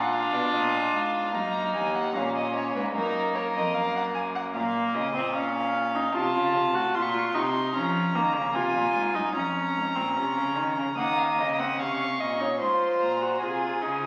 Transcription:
Already playing: cello A#2, viola D4, violin F4 F#5
0.13 violin F5
0.33 cello B2, violin D5
0.53 cello A#2, violin D#5
0.94 cello G#2, violin F5
1.34 cello F#2, viola A#3, violin D#4 A#5
1.75 cello D#2, violin G#5
1.95 violin F#5
2.15 cello A#2, viola A#3, violin C#4 F5
2.35 violin D#5
2.55 violin C#5
2.76 cello G#2, violin B4
2.95 cello F#2, violin D#4 A#4
3.35 violin A#4 C#5
3.54 cello F2, violin D#5
3.74 cello F#2, violin F5
3.96 violin F#5
4.15 violin G#5
4.35 violin F#5
4.55 cello A#2, viola A#3, violin F5
4.94 cello C#3, violin D#5
5.15 cello A#2, viola C4
5.35 viola C#4, violin F5
5.95 viola D#4
6.14 cello C3, viola F4, violin A5
6.34 cello C#3
6.54 cello C3
6.74 cello A2, viola F#4
6.94 cello A#2, viola F4, violin C6
7.02 violin C#6
7.10 violin C6
7.19 violin C#6
7.26 violin C6
7.34 cello C3, viola D#4, violin C#6
7.43 violin C6
7.75 cello F3, viola C#4, violin A#5
8.15 cello D#3, viola A#3
8.35 cello C#3
8.55 cello C3, viola F4, violin G#5
8.75 cello A#2
8.95 cello G#2
9.15 cello F#2, viola D#4
9.35 cello F2, viola C#4, violin A#5
9.75 cello G#2
9.96 cello A#2, viola C4
10.16 cello C3, viola C#4
10.36 cello C#3
10.56 cello D#3
10.77 cello C#3
10.98 cello D#3, viola A#3, violin F#5 D#6
11.18 violin F5
11.38 cello C#3, violin D#5
11.59 viola C4, violin F#5
11.79 cello C3, viola C#4, violin F5 C#6
12.20 cello A#2, violin D#5
12.40 viola D#4, violin C#5
12.60 cello G#2, viola F4, violin C5 C6
13.01 cello A#2, violin A#5
13.21 viola F#4
13.41 cello C3, viola F4, violin G#4 G#5
13.82 cello C#3, viola D#4

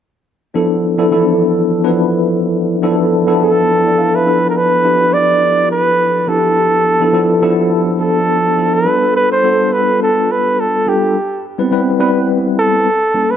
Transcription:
0.54 tine electric piano F3 B3 D4 E4 A4
0.98 tine electric piano F3 B3 D4 E4 A4
1.11 tine electric piano E3 B3 D4 E4 A4
1.18 tine electric piano F3
1.84 tine electric piano F3 B3 D4 E4 B4
2.82 tine electric piano F3 B3 D4 E4 A4
3.27 tine electric piano F3 B3 D4 E4 A4
3.43 flugelhorn A4
3.85 tine electric piano A4 D5
3.98 tine electric piano B4 F5
4.14 flugelhorn B4, tine electric piano E5 A5
4.26 tine electric piano F3 B3 D4 E4 A4
4.50 flugelhorn A#4
4.57 flugelhorn B4
4.83 tine electric piano F3 B3 D4 E4 G4
5.13 flugelhorn D5
5.71 flugelhorn B4
6.27 tine electric piano F3 B3 D4 E4 G4, flugelhorn A4
7.00 tine electric piano F3 B3 D4 E4 A4
7.12 tine electric piano F3 B3 D4 E4 A4
7.42 tine electric piano F3 B3 D4 E4 A4
8.00 flugelhorn A4
8.57 tine electric piano F3 B3 D4 E4 A4
8.74 flugelhorn B4
8.85 tine electric piano G3 B3 D4 F4 A4
9.16 flugelhorn B4
9.32 flugelhorn C5
9.43 tine electric piano G3 B3 D4 F4 A4
9.73 flugelhorn B4
10.03 flugelhorn A4
10.31 flugelhorn B4
10.60 flugelhorn A4
10.86 tine electric piano G3 B3 D4 F4 A4, flugelhorn G4
11.58 tine electric piano G3 B3 C4 E4 B4
11.71 tine electric piano G3 B3 C4 E4 B4
11.99 tine electric piano G3 B3 C4 E4 B4
12.59 flugelhorn A4
13.14 tine electric piano G3 A#3 C#4 E4 A4
13.31 flugelhorn B4

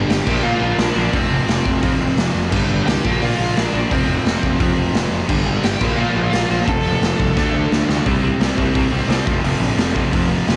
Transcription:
Already playing: distorted electric guitar G2 D3 G3
0.10 picked electric bass G1, lead electric guitar G4 G5, snare, open hi-hat
0.26 picked electric bass A#1, distorted electric guitar A#2 F3 A#3, kick, crash
0.43 picked electric bass A#2, lead electric guitar F4 F5
0.61 picked electric bass A#1
0.78 picked electric bass A#1, lead electric guitar D4 D5, snare, open hi-hat
0.95 picked electric bass A#1, distorted electric guitar A#2 F3 A#3
1.13 picked electric bass F1, distorted electric guitar F2 C3 F3, lead electric guitar C4 C5, kick, open hi-hat
1.30 picked electric bass F1
1.48 picked electric bass F1, snare, open hi-hat
1.65 picked electric bass F1, kick
1.82 distorted electric guitar F2 C3 F3, picked electric bass F2, kick, open hi-hat
2.00 picked electric bass F1
2.17 picked electric bass F1, snare, open hi-hat
2.34 picked electric bass F1
2.51 picked electric bass G1, distorted electric guitar G2 D3 G3, kick, crash
2.70 picked electric bass G1
2.86 picked electric bass C2, lead electric guitar G4 G5, snare, open hi-hat
3.04 picked electric bass A#1, distorted electric guitar A#2 F3 A#3, kick
3.22 picked electric bass A#2, lead electric guitar F4 F5, open hi-hat
3.39 picked electric bass A#1
3.56 picked electric bass A#1, lead electric guitar D4 D5, snare, open hi-hat
3.72 picked electric bass A#1, distorted electric guitar A#2 F3 A#3
3.90 picked electric bass F1, distorted electric guitar F2 C3 F3, lead electric guitar C4 C5, kick, open hi-hat
4.08 picked electric bass F1
4.25 picked electric bass F1, snare, open hi-hat
4.43 picked electric bass F1, kick
4.58 distorted electric guitar F2 C3 F3, picked electric bass F2, kick, open hi-hat
4.77 picked electric bass F1
4.94 picked electric bass F1, snare, open hi-hat
5.11 picked electric bass F1
5.28 picked electric bass G1, distorted electric guitar G2 D3 G3, kick, crash
5.46 picked electric bass G1
5.63 picked electric bass G1, lead electric guitar G4 G5, snare, open hi-hat
5.79 picked electric bass A#1, distorted electric guitar A#2 F3 A#3, kick, crash
5.96 picked electric bass A#2, lead electric guitar F4 F5
6.15 picked electric bass A#1
6.30 picked electric bass A#1, lead electric guitar F4 F5, snare, open hi-hat
6.49 picked electric bass A#1, distorted electric guitar A#2 F3 A#3
6.65 picked electric bass F1, distorted electric guitar F2 C3 F3, lead electric guitar A4 A5, kick, open hi-hat
6.84 picked electric bass F1
7.02 picked electric bass F1, snare, open hi-hat
7.20 picked electric bass C2, kick
7.36 picked electric bass D2, distorted electric guitar D3 A3 D4, kick, snare
7.54 picked electric bass D2
7.72 picked electric bass D2, snare
7.89 picked electric bass D2, snare
8.05 picked electric bass C2, distorted electric guitar C3 G3 C4, kick, open hi-hat
8.23 picked electric bass C2, distorted electric guitar C3 G3 C4
8.40 picked electric bass C2, distorted electric guitar C3 G3 C4, snare, open hi-hat
8.57 picked electric bass C2, distorted electric guitar C3 G3 C4, kick
8.75 picked electric bass C2, distorted electric guitar C3 G3 C4, kick, open hi-hat
8.92 picked electric bass C2, distorted electric guitar C3 G3 C4
9.09 picked electric bass C2, distorted electric guitar C3 G3 C4, snare, open hi-hat
9.26 picked electric bass F1, distorted electric guitar F2 C3 F3, kick
9.43 picked electric bass F1, distorted electric guitar F2 C3 F3, open hi-hat
9.60 picked electric bass A#1, distorted electric guitar F2 C3 F3
9.77 picked electric bass F1, distorted electric guitar F2 C3 F3, snare, open hi-hat
9.95 distorted electric guitar F2 C3 F3, kick
10.12 picked electric bass F1, distorted electric guitar F2 C3 F3, kick, open hi-hat
10.30 distorted electric guitar F2 C3 F3
10.47 picked electric bass F1, distorted electric guitar F2 C3 F3, snare, open hi-hat

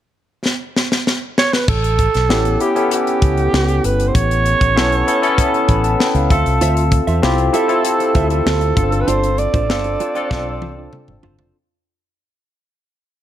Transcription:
0.46 snare
0.76 snare
0.92 snare
1.07 snare
1.38 alto saxophone C#5, snare
1.53 alto saxophone B4, snare
1.68 fingered electric bass A1, alto saxophone A4, kick, crash
1.84 closed hi-hat
1.99 kick, closed hi-hat
2.14 fingered electric bass B1, snare, closed hi-hat
2.29 fingered electric bass A1, tine electric piano B3 C#4 E4 G4, snare
2.45 closed hi-hat
2.60 tine electric piano B3 C#4 E4 G4, alto saxophone G4, closed hi-hat
2.75 tine electric piano B3 C#4 E4 A4, closed hi-hat
2.91 alto saxophone G4, closed hi-hat
3.07 closed hi-hat
3.22 fingered electric bass C#2, kick, closed hi-hat
3.37 closed hi-hat
3.53 fingered electric bass C#2, snare
3.68 closed hi-hat
3.84 fingered electric bass G1, alto saxophone B4, closed hi-hat
4.00 closed hi-hat
4.08 alto saxophone C5
4.15 fingered electric bass A1, alto saxophone C#5, kick, closed hi-hat
4.31 closed hi-hat
4.46 closed hi-hat
4.61 fingered electric bass A1, kick, closed hi-hat
4.76 fingered electric bass B1, tine electric piano B3 C#4 E4 A4, snare
4.92 closed hi-hat
5.07 tine electric piano B3 C#4 E4 A4, closed hi-hat
5.22 tine electric piano B3 C#4 E4 A4, closed hi-hat
5.38 kick, closed hi-hat
5.54 closed hi-hat
5.68 fingered electric bass A1, tine electric piano B5, kick, closed hi-hat
5.84 tine electric piano A5, closed hi-hat
6.00 tine electric piano G5, snare
6.15 fingered electric bass C#2, tine electric piano F5, closed hi-hat
6.30 fingered electric bass D2, tine electric piano C4 F4 A4 E5, kick, closed hi-hat
6.46 fingered electric bass C2, closed hi-hat
6.61 fingered electric bass D2, clean electric guitar F4 C5 E5, closed hi-hat
6.77 muted clean electric guitar stroke, closed hi-hat
6.92 muted clean electric guitar stroke, kick, closed hi-hat
7.07 fingered electric bass E2, clean electric guitar F4 C5 E5, closed hi-hat
7.22 fingered electric bass C2, tine electric piano C4 E4 F4 G4, muted clean electric guitar stroke, snare
7.38 muted clean electric guitar stroke, closed hi-hat
7.52 tine electric piano C4 E4 F4 A4, clean electric guitar F4 C5 E5, alto saxophone A4, closed hi-hat
7.68 tine electric piano C4 E4 F4 A4, clean electric guitar F4 C5 E5, closed hi-hat
7.85 muted clean electric guitar stroke, closed hi-hat
8.00 muted clean electric guitar stroke, closed hi-hat
8.15 fingered electric bass D2, clean electric guitar F4 C5 E5, kick, closed hi-hat
8.30 clean electric guitar F4 C5 E5, alto saxophone A4, closed hi-hat
8.46 fingered electric bass D2, muted clean electric guitar stroke, snare
8.61 muted clean electric guitar stroke, closed hi-hat
8.76 fingered electric bass G1, tine electric piano B3 D4 F4 A4, kick, closed hi-hat
8.83 tine electric piano C4
8.92 muted clean electric guitar stroke, closed hi-hat
9.01 alto saxophone B4
9.07 fingered electric bass G1, clean electric guitar D4 F4 D5, alto saxophone C5, closed hi-hat
9.23 muted clean electric guitar stroke, closed hi-hat
9.38 alto saxophone D5, muted clean electric guitar stroke, closed hi-hat
9.54 fingered electric bass A1, clean electric guitar D4 F4 C5, kick, closed hi-hat
9.69 fingered electric bass G1, tine electric piano C4 D4 F4 A4, muted clean electric guitar stroke, snare
9.84 muted clean electric guitar stroke, closed hi-hat
10.00 tine electric piano C4 D4 F4 C5, clean electric guitar D4 F4 C5, closed hi-hat
10.15 tine electric piano C4 D4 F4 A4, clean electric guitar D4 F4 C5, closed hi-hat
10.31 fingered electric bass B1, muted clean electric guitar stroke, kick, snare
10.46 muted clean electric guitar stroke
10.62 fingered electric bass C2, clean electric guitar D4 F4 C5, high tom
10.77 clean electric guitar D4 F4 D5
10.93 mid tom
11.08 fingered electric bass G1, muted clean electric guitar stroke, mid tom
11.23 fingered electric bass G1, clean electric guitar D4 F4 C5, floor tom
11.39 fingered electric bass F1, clean electric guitar D4 F4 C5, floor tom

